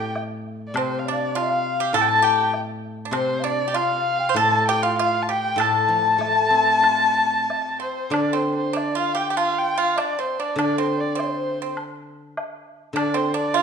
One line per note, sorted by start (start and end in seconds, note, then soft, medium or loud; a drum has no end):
0.00 0.75 A2 medium
0.00 0.15 G4 medium
0.00 0.14 G5 medium
0.16 low woodblock soft
0.67 0.79 D5 medium
0.74 1.94 C3 medium
0.74 1.05 C4 medium
0.74 1.07 C5 medium
0.74 high woodblock medium
0.78 1.00 C5 medium
0.99 1.10 F5 medium
1.05 1.35 D4 medium
1.05 1.14 D5 medium
1.05 1.39 D5 medium
1.13 1.21 F5 medium
1.20 1.37 D5 medium
1.35 1.77 F4 medium
1.35 1.98 F5 medium
1.35 1.96 F5 medium
1.35 high woodblock soft
1.80 1.94 G4 medium
1.93 3.13 A2 medium
1.93 2.22 A4 medium
1.93 2.03 A5 loud
1.93 2.09 A5 medium
1.93 high woodblock soft
2.01 2.10 G5 medium
2.09 2.26 A5 loud
2.09 2.51 A5 medium
2.22 2.51 G4 medium
2.22 2.54 G5 medium
2.54 low woodblock soft
3.05 3.13 D4 medium
3.11 4.35 C3 medium
3.11 3.42 C4 medium
3.11 3.46 C5 medium
3.11 3.41 C5 medium
3.11 high woodblock medium
3.39 3.46 F5 medium
3.44 3.66 D4 medium
3.44 3.75 D5 medium
3.44 3.77 D5 medium
3.68 3.75 G4 medium
3.73 4.25 F4 medium
3.73 4.20 F5 medium
3.73 4.39 F5 medium
3.73 high woodblock soft
4.19 4.35 G5 medium
4.29 4.36 C5 medium
4.34 5.55 A2 medium
4.34 4.65 A4 medium
4.34 4.62 A5 medium
4.34 4.67 A5 loud
4.34 high woodblock soft
4.62 4.69 A5 medium
4.68 4.82 G4 loud
4.68 4.85 G5 medium
4.68 4.85 G5 loud
4.83 4.97 F4 medium
4.83 4.98 F5 medium
4.98 5.27 F4 medium
4.98 5.27 F5 medium
4.98 5.24 F5 loud
4.98 low woodblock soft
5.22 5.32 A5 medium
5.29 5.57 G4 medium
5.29 5.62 G5 medium
5.29 5.63 G5 loud
5.56 7.46 A2 medium
5.56 7.76 A4 medium
5.60 7.54 A5 loud
5.60 7.81 A5 loud
5.60 high woodblock medium
5.88 7.15 F3 soft
6.18 7.47 A3 soft
6.18 low woodblock soft
6.50 7.80 C4 soft
6.83 8.12 F4 soft
6.83 high woodblock soft
7.50 low woodblock soft
7.80 8.10 C4 medium
7.80 8.15 C5 medium
7.80 8.17 C5 medium
8.10 9.96 D3 soft
8.10 8.31 D4 medium
8.10 8.36 D5 medium
8.10 high woodblock medium
8.15 8.38 D5 medium
8.33 8.72 C4 medium
8.33 8.55 C5 medium
8.33 8.56 C5 medium
8.56 8.77 C5 medium
8.56 8.79 C5 medium
8.73 8.93 D4 medium
8.73 8.97 D5 medium
8.73 low woodblock soft
8.78 8.99 D5 medium
8.95 9.14 F4 medium
8.95 9.18 F5 medium
8.95 9.21 F5 medium
9.15 9.28 G4 medium
9.15 9.38 G5 medium
9.19 9.37 G5 medium
9.30 9.37 G4 medium
9.37 9.74 F4 medium
9.37 9.60 F5 medium
9.37 9.56 F5 medium
9.37 high woodblock soft
9.57 9.74 G5 medium
9.57 9.80 G5 medium
9.74 9.80 G5 medium
9.78 9.96 F4 medium
9.78 9.98 F5 medium
9.78 10.00 F5 medium
9.96 10.16 D4 medium
9.96 10.20 D5 medium
9.96 10.21 D5 medium
9.96 high woodblock soft
9.96 low woodblock soft
10.19 10.37 C4 medium
10.19 10.41 C5 medium
10.19 10.42 C5 medium
10.40 10.57 D4 medium
10.40 10.59 D5 medium
10.56 12.36 D3 medium
10.56 10.77 D4 medium
10.56 high woodblock medium
10.60 10.80 D5 medium
10.60 10.81 D5 medium
10.78 11.14 C4 medium
10.78 10.99 C5 medium
10.78 11.02 C5 medium
10.98 11.20 D5 medium
10.98 11.21 D5 medium
11.15 11.57 C4 medium
11.15 11.62 C5 medium
11.15 low woodblock soft
11.20 11.78 C5 medium
11.62 11.76 C4 medium
11.62 11.76 C5 medium
11.77 high woodblock soft
12.37 high woodblock soft
12.37 low woodblock soft
12.93 13.62 D3 medium
12.93 13.14 D4 medium
12.93 13.18 D5 medium
12.93 high woodblock medium
12.98 13.33 D5 medium
13.14 13.33 C4 medium
13.14 13.36 C5 medium
13.34 13.53 D4 medium
13.34 13.58 D5 medium
13.38 13.59 D5 medium
13.54 13.62 F4 medium
13.54 13.62 F5 medium
13.54 low woodblock soft